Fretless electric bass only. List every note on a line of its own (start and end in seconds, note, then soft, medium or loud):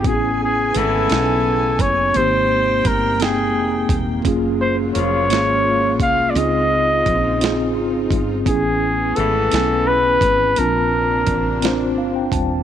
0.05 0.71 A1 loud
0.75 1.06 G#1 loud
1.11 1.76 B1 medium
1.79 2.11 F#1 medium
2.16 2.81 G#1 loud
2.85 3.56 G1 medium
3.56 3.87 F1 medium
3.89 4.21 D#1 medium
4.25 4.91 F#1 medium
4.95 5.30 F1 medium
5.30 6.00 G#1 loud
6.00 6.32 C2 medium
6.35 7.02 C#2 loud
7.07 7.77 A#1 loud
7.77 8.08 G#1 medium
8.11 8.43 G1 medium
8.47 9.12 A1 loud
9.17 9.48 G#1 medium
9.53 10.18 B1 medium
10.22 10.53 G#1 medium
10.58 11.23 A#1 loud
11.28 11.99 A1 medium
11.99 12.30 G1 medium
12.32 12.63 D#1 medium